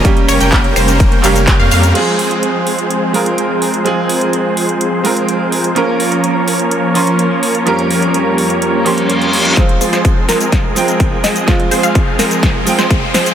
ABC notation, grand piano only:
X:1
M:4/4
L:1/8
Q:1/4=126
K:Fm
V:1 name="Grand piano"
[G,B,DG]4- [G,B,DG] [G,B,DG]3 | [A,CFA]4- [A,CFA] [A,CFB]3 | [A,CFA]4- [A,CFA] [A,CFB]3 | [F,B,DFB]4- [F,B,DFB] [F,B,DFc']3 |
[F,B,DGB]4- [F,B,DGB] [F,B,DGc']3 | [F,A,CF]4- [F,A,CF] [F,A,Cg]3 | [F,A,CF]4- [F,A,CF] [F,A,Cg]3 |]